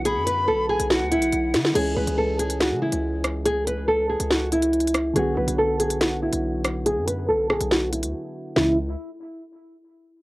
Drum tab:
CC |------------------------------------------------|x-----------------------------------------------|------------------------------------------------|------------------------------------------------|
HH |x-----x--------------x--------x--x--x-----x-----|x--------x--------x--x--x--------x--------x-----|x-----x--------------x--------x--x--x-x-x-x-----|x--------x--------x--x--x--------x--------x-----|
SD |------------------------o-----------------o--o--|------------------------o-----------------r-----|------------------------o-----------------r-----|------------------------o-----------------r-----|

CC |------------------------------------------------|------------------------------------------------|
HH |x-----x--------------x--------x--x--------------|------------------------------------------------|
SD |------------------r-----o-----------------------|o-----------------------------------------------|